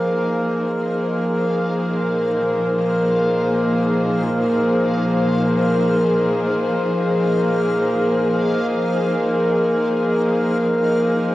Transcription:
Already playing: F3 A#3 D#4 G#4 C5 F5 F6
1.92 A#2

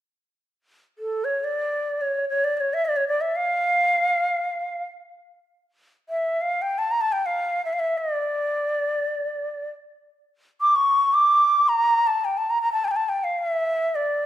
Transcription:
0.99 A4
1.24 C#5
1.44 D5
2.01 C#5
2.29 C#5
2.44 D5
2.57 C#5 D5
2.74 E5
2.85 D5
2.96 C#5
3.08 D5
3.21 E5
3.36 F5
6.09 E5
6.41 F5
6.62 G5
6.78 A5
6.91 A#5
7.01 A5
7.12 G5
7.26 F5
7.65 E5
7.73 F5
7.79 E5
7.98 D5
10.61 D6
10.76 C#6
11.14 D6
11.68 A#5
12.07 A5
12.25 G5
12.38 A5
12.50 A#5
12.62 A#5
12.73 A5
12.85 G5 A5
12.91 G5
12.96 A5
13.09 G5
13.24 F5
13.39 F5
13.50 E5
13.95 D5

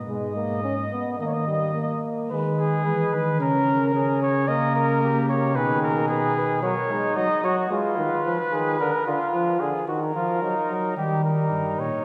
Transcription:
0.08 G#2 G#3 D#5
0.36 A#3
0.63 C#4
0.92 B3
1.19 D#3 A#3 D#5
1.27 C#5
1.34 D#5
1.48 G3
1.75 A#3
2.31 D#3 G#3 B4
2.59 G#4
2.85 E3 G#3 B4
3.14 D#3 B4
3.40 C#3 C#4 A#4
3.94 C#4 G#4
4.22 C#5
4.48 A#3 A#4 D#5
4.76 A#4
5.02 A#3 G4
5.29 G4 C#5
5.56 B2 D#3 G#4 B4
5.82 A#4
6.09 G#4 B4
6.37 B4
6.63 F#3 A#4 C#5
6.90 G#3 D#4
7.16 F#3 D#5
7.43 F#3 F#4 C#5
7.70 G#3 F4 B4
7.98 D#3
8.26 F3
8.52 D#3 G#4
8.79 D3 A#4
9.07 D3 F4
9.34 F3
9.60 D3 G#4
9.88 D#3 F#4 A#4
10.15 F3 F4
10.42 F#3 D#4
10.70 F#3
10.97 D#3 G3 D#4 G4
11.24 A#4
11.52 G2
11.79 A#2 C#5

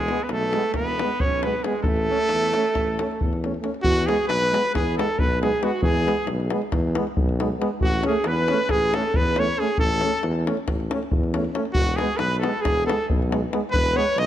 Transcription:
Already playing: E1 G#3 G#4
0.08 G#3 B3, davul high
0.18 davul high
0.23 B3 B4
0.29 B1 A3 A4, davul high
0.53 G#3 B3, davul high
0.64 davul high
0.74 E1 B4, davul high, davul low
0.78 B3
0.87 davul high
0.99 G#3 B3, davul high
1.10 davul high
1.20 B1 C#5, davul low
1.25 C#4
1.32 davul high
1.43 G#3 B3 B4, davul high
1.54 davul high
1.64 G#3 B3 G#4, davul high
1.75 davul high
1.83 A1 A3 A4, davul low
1.96 davul high
2.09 A3 C#4
2.20 davul high
2.29 E2, davul high
2.42 davul high
2.54 A3 C#4, davul high
2.65 davul high
2.75 A1, davul high, davul low
2.88 davul high
2.99 A3 C#4, davul high
3.11 davul high
3.21 E2, davul low
3.33 davul high
3.43 A3 C#4, davul high
3.54 davul high
3.61 A3 C#4, davul high
3.74 davul high
3.83 E2 F#4, davul low
3.97 davul high
4.06 G#3 B3 G#4, davul high
4.28 B1 B4, davul high
4.42 davul high
4.51 G#3 B3, davul high
4.65 davul high
4.74 E2 G#4, davul high, davul low
4.97 G#3 B3 A4, davul high
5.09 davul high
5.18 B1 B4, davul low
5.31 davul high
5.42 G#3 B3 G#4, davul high
5.62 G#3 B3 F#4, davul high
5.67 F#4
5.82 E2 G#4, davul low
5.88 G#4
5.96 davul high
6.06 G#3 B3, davul high
6.27 B1, davul high
6.40 davul high
6.50 G#3 B3, davul high
6.62 davul high
6.72 E2, davul high, davul low
6.95 G#3 B3, davul high
7.07 davul high
7.17 B1, davul low
7.29 davul high
7.39 G#3 B3, davul high
7.60 G#3 B3, davul high
7.81 A1 F#4, davul low
7.92 davul high
8.03 C#4 G#4, davul high
8.08 A3
8.24 E2 B4, davul high
8.48 A3 C#4, davul high
8.59 davul high
8.69 A1 G#4, davul high, davul low
8.94 A3 C#4 A4, davul high
9.03 davul high
9.14 E2 B4, davul low
9.20 B4
9.25 davul high
9.36 A3 C#4 C#5, davul high
9.58 A3 C#4 G#4
9.78 A1 A4, davul low
10.01 A3 C#4, davul high
10.12 davul high
10.23 E2, davul high
10.35 davul high
10.47 A3 C#4, davul high
10.57 davul high
10.68 A1, davul high, davul low
10.80 davul high
10.91 A3 C#4, davul high
11.03 davul high
11.12 E2, davul low
11.23 davul high
11.34 A3 C#4, davul high
11.44 davul high
11.54 A3 C#4, davul high
11.65 davul high
11.73 E1 F#4, davul low
11.87 davul high
11.96 B3 G#4, davul high
12.01 G#3
12.17 B1 B4, davul high
12.39 B3 A4
12.43 G#3, davul high
12.54 davul high
12.61 E1 G#4, davul high, davul low
12.86 G#3 B3 A4, davul high
13.01 davul high
13.09 B1, davul low
13.22 davul high
13.29 G#3 B3, davul high
13.51 G#3 B3, davul high
13.71 E1 B4, davul low
13.86 davul high
13.95 G#3 B3 C#5
14.16 B1 D#5, davul high

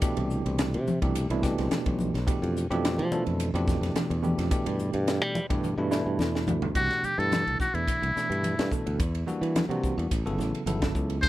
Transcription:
0.02 B2 E3 A3 D4 G4, kick, hi-hat pedal, ride, muted conga
0.17 C2, ride
0.30 hi-hat pedal, muted conga
0.46 C2, ride
0.58 snare, hi-hat pedal, ride
0.74 C3, ride
0.87 hi-hat pedal, high conga
1.02 C2 B2 E3 A3 D4 G4, kick, ride
1.15 hi-hat pedal, ride
1.30 C2 B2 E3 A3 D4 E4, ride
1.43 B2 E3 A3 D4 G4, kick, snare, hi-hat pedal
1.58 C2, snare, ride
1.71 snare, hi-hat pedal, ride, high conga
1.86 B1, kick, ride
1.99 hi-hat pedal, muted conga, high conga
2.14 B1, snare, ride
2.26 B2 E3 A3 D4 G4, muted fingered electric bass stroke, kick, hi-hat pedal, ride
2.42 F2, ride
2.57 hi-hat pedal
2.70 F2 B2 E3 A3 D4 G4, ride
2.85 snare, hi-hat pedal, ride
2.98 F3, ride
3.11 B2 E3 A3 D4 A4, hi-hat pedal, high conga
3.26 F2, ride
3.40 hi-hat pedal, ride, muted conga
3.54 F2 B2 E3 A3 D4 G4, ride
3.68 kick, snare, hi-hat pedal
3.81 F2, snare, ride
3.95 muted fingered electric bass stroke, snare, hi-hat pedal, ride, high conga
4.10 E2, ride
4.23 B2 E3 A3 D4 G4, hi-hat pedal, muted conga, high conga
4.38 F2, snare, ride
4.51 B2 E3 A3 D4 G4, muted fingered electric bass stroke, kick, hi-hat pedal, ride
4.66 G2, ride
4.79 hi-hat pedal, muted conga, low conga
4.93 G2, ride
5.08 snare, hi-hat pedal, ride
5.22 G3, ride
5.35 hi-hat pedal, high conga
5.50 G2 B2 E3 A3 D4 G4, kick, ride
5.63 hi-hat pedal, high tom, muted conga
5.78 G2 B2 E3 A3 D4 E4
5.91 B2 E3 A3 D4 E4, snare, hi-hat pedal
6.06 G2
6.19 E2, snare, hi-hat pedal, high conga
6.35 snare
6.47 D2, floor tom, hi-hat pedal, muted conga, high conga
6.62 floor tom
6.75 C2 B2 E3 A3 D4 F#4 G4, kick, hi-hat pedal, ride
6.90 snare, ride
7.03 G4, muted fingered electric bass stroke, hi-hat pedal, muted conga, high conga
7.18 G2 B2 E3 A3 D4 E4 A4, ride
7.32 snare, hi-hat pedal, ride, high conga
7.47 C2, ride
7.60 F#4, muted fingered electric bass stroke, kick, snare, hi-hat pedal
7.74 E2 B2 E3 A3 D4 E4, ride
7.87 kick, hi-hat pedal, ride, muted conga
8.02 C2, ride
8.16 B2 E3 A3 D4 E4, muted fingered electric bass stroke, snare, hi-hat pedal
8.30 G2, ride
8.43 hi-hat pedal, ride, high conga
8.59 G2, snare, ride
8.71 B2 E3 A3 D4 A4, kick, hi-hat pedal, muted conga
8.86 D2, ride
8.99 E2, kick, hi-hat pedal, ride, muted conga
9.15 ride
9.27 E3 G3 A#3 D4 F#4, hi-hat pedal, muted conga, high conga
9.41 E3, ride
9.56 snare, hi-hat pedal, ride, high conga
9.69 C3 E3 G3 A#3 D4 F#4, ride
9.84 kick, hi-hat pedal
9.98 E2, ride
10.11 A1, kick, hi-hat pedal, ride, muted conga
10.25 G1 C#3 F#3 B3 E4 A4, ride
10.38 A1, snare, hi-hat pedal, high conga
10.55 ride
10.66 G1 C#3 F#3 B3 E4 A4, hi-hat pedal, ride, high conga
10.82 kick, snare, ride
10.95 C#2, kick, hi-hat pedal, muted conga
11.10 ride
11.22 D2 D3 G3 C4 F4 A4 C5, kick, hi-hat pedal, ride, muted conga

